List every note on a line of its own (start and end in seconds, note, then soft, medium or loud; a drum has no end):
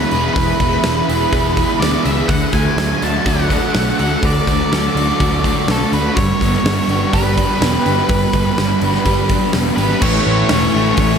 0.00 0.13 E3 medium
0.00 0.85 E3 medium
0.00 0.59 G#3 medium
0.00 0.11 B3 medium
0.00 0.60 B3 medium
0.00 0.86 E4 medium
0.00 0.13 G#4 medium
0.00 0.37 G#4 medium
0.00 2.26 G#4 medium
0.00 0.32 B4 medium
0.00 2.26 E5 medium
0.00 2.26 B5 medium
0.11 0.28 E1 medium
0.11 0.83 B3 medium
0.11 1.32 G#4 medium
0.11 open hi-hat soft
0.34 0.51 E1 medium
0.34 1.58 E2 medium
0.34 0.83 E3 medium
0.34 1.84 B4 medium
0.34 kick loud
0.34 open hi-hat medium
0.60 0.76 E1 medium
0.60 1.81 G#3 medium
0.60 1.80 B3 medium
0.60 kick medium
0.60 open hi-hat medium
0.84 1.00 E1 medium
0.84 2.06 E3 medium
0.84 1.32 B3 medium
0.84 snare medium
0.84 open hi-hat medium
1.09 1.24 E1 medium
1.09 1.57 E4 medium
1.09 2.30 G#4 medium
1.09 open hi-hat medium
1.33 1.64 E1 loud
1.33 2.04 B3 medium
1.33 2.04 G#4 medium
1.33 kick loud
1.33 open hi-hat medium
1.57 2.30 E3 medium
1.57 2.30 E4 medium
1.57 kick medium
1.57 open hi-hat medium
1.80 1.96 D2 medium
1.80 2.30 G#3 medium
1.80 2.30 B3 medium
1.80 2.04 D5 medium
1.80 snare loud
1.80 open hi-hat medium
2.05 2.21 C#2 medium
2.05 2.30 B3 medium
2.05 2.30 G#4 medium
2.05 2.30 E5 medium
2.05 open hi-hat medium
2.28 2.44 D2 medium
2.28 3.51 D3 medium
2.28 3.50 D3 medium
2.28 6.13 A4 medium
2.28 2.53 F#5 medium
2.28 6.13 F#5 medium
2.28 4.21 D6 medium
2.28 kick loud
2.28 open hi-hat medium
2.53 2.69 D2 medium
2.53 3.75 A3 medium
2.53 3.73 A3 medium
2.53 3.03 G#5 medium
2.53 kick medium
2.53 open hi-hat medium
2.77 2.92 D2 loud
2.77 3.99 F#3 medium
2.77 3.26 D4 medium
2.77 snare medium
2.77 open hi-hat medium
3.02 3.18 D2 medium
3.02 3.50 D4 medium
3.02 4.24 F#4 medium
3.02 3.26 A5 loud
3.02 open hi-hat medium
3.26 3.57 D2 medium
3.26 4.01 D4 medium
3.26 3.98 F#4 medium
3.26 3.99 F#5 loud
3.26 kick loud
3.26 open hi-hat medium
3.50 4.23 D3 medium
3.50 4.96 D4 medium
3.50 kick medium
3.50 open hi-hat medium
3.74 3.91 B1 medium
3.74 4.47 A3 medium
3.74 4.48 A3 medium
3.74 snare loud
3.74 open hi-hat medium
3.99 4.15 D2 medium
3.99 4.73 D4 medium
3.99 5.19 F#4 medium
3.99 4.25 F#5 medium
3.99 open hi-hat medium
4.23 4.39 D2 medium
4.23 5.44 D3 medium
4.23 5.45 D3 medium
4.23 5.73 D5 medium
4.23 6.15 C#6 medium
4.23 kick loud
4.23 open hi-hat medium
4.47 4.63 D2 loud
4.47 5.67 A3 medium
4.47 5.69 A3 medium
4.47 kick medium
4.47 open hi-hat medium
4.72 4.87 D2 loud
4.72 5.92 F#3 medium
4.72 5.22 D4 medium
4.72 snare loud
4.72 open hi-hat medium
4.95 5.11 D2 medium
4.95 5.45 D4 medium
4.95 6.17 F#4 medium
4.95 open hi-hat medium
5.20 5.50 D2 medium
5.20 5.93 D4 medium
5.20 5.93 F#4 medium
5.20 kick loud
5.20 open hi-hat medium
5.44 6.18 D3 medium
5.44 6.90 D4 medium
5.44 kick medium
5.44 open hi-hat medium
5.68 5.83 B1 medium
5.68 6.17 A3 medium
5.68 6.18 A3 medium
5.68 5.93 A4 medium
5.68 snare loud
5.68 open hi-hat medium
5.92 6.08 D2 medium
5.92 6.66 D4 medium
5.92 6.17 F#4 medium
5.92 6.18 B4 medium
5.92 open hi-hat medium
6.16 6.32 G1 loud
6.16 7.38 G2 medium
6.16 6.65 G3 medium
6.16 9.99 B4 medium
6.16 7.16 C#5 medium
6.16 9.99 G5 medium
6.16 kick loud
6.16 open hi-hat medium
6.41 6.56 G1 medium
6.41 7.61 B3 medium
6.41 7.60 B3 medium
6.41 kick medium
6.41 open hi-hat medium
6.53 snare soft
6.64 6.80 G1 loud
6.64 7.86 G3 medium
6.64 7.13 D4 medium
6.64 snare loud
6.64 open hi-hat medium
6.88 7.04 G1 medium
6.88 7.36 D4 medium
6.88 8.11 G4 medium
6.88 open hi-hat medium
7.13 7.44 G1 medium
7.13 7.86 D4 medium
7.13 7.84 G4 medium
7.13 9.51 B4 medium
7.13 kick loud
7.13 open hi-hat medium
7.38 8.59 G3 medium
7.38 8.58 D4 medium
7.38 kick medium
7.38 open hi-hat medium
7.61 7.77 E1 loud
7.61 8.32 B3 medium
7.61 8.34 B3 medium
7.61 snare loud
7.61 open hi-hat medium
7.86 8.01 G1 medium
7.86 8.58 D4 medium
7.86 9.05 G4 medium
7.86 open hi-hat soft
8.09 8.25 G1 loud
8.09 9.31 G2 medium
8.09 8.57 G3 medium
8.09 kick loud
8.09 open hi-hat medium
8.33 8.49 G1 medium
8.33 9.54 B3 medium
8.33 9.55 B3 medium
8.33 kick medium
8.33 open hi-hat medium
8.58 8.73 G1 loud
8.58 9.79 G3 medium
8.58 9.07 D4 medium
8.58 snare medium
8.58 open hi-hat medium
8.82 8.97 G1 medium
8.82 9.30 D4 medium
8.82 10.04 G4 medium
8.82 open hi-hat medium
8.94 snare soft
9.05 9.36 G1 medium
9.05 9.80 D4 medium
9.05 9.77 G4 medium
9.05 kick medium
9.05 open hi-hat medium
9.29 10.04 G3 medium
9.29 10.03 D4 medium
9.29 kick medium
9.29 open hi-hat medium
9.53 9.69 E1 loud
9.53 10.03 B3 medium
9.53 10.04 B3 medium
9.53 snare loud
9.53 open hi-hat medium
9.76 9.93 G#1 medium
9.76 10.03 G4 medium
9.76 10.02 B4 medium
9.76 open hi-hat medium
9.81 10.04 D4 medium
10.02 10.18 A1 loud
10.02 11.18 A2 medium
10.02 10.49 A2 loud
10.02 11.18 E3 medium
10.02 10.29 E3 medium
10.02 11.18 A3 loud
10.02 11.18 C#4 medium
10.02 11.18 C#4 loud
10.02 11.18 A4 medium
10.02 10.99 C#5 loud
10.02 11.18 G#5 medium
10.02 kick loud
10.02 crash loud
10.06 10.27 A3 loud
10.06 11.18 E4 loud
10.27 10.43 A1 loud
10.27 10.50 E3 medium
10.27 10.53 A3 medium
10.49 10.67 E1 loud
10.49 10.97 A2 medium
10.49 10.77 E3 medium
10.49 snare loud
10.49 open hi-hat medium
10.53 10.75 A3 medium
10.75 10.91 A1 medium
10.75 11.18 A2 medium
10.75 10.98 E3 medium
10.75 11.01 A3 medium
10.97 11.14 A1 loud
10.97 11.18 A2 loud
10.97 11.18 E3 loud
10.97 11.18 C#5 loud
10.97 kick loud
10.97 open hi-hat medium
11.01 11.18 A3 loud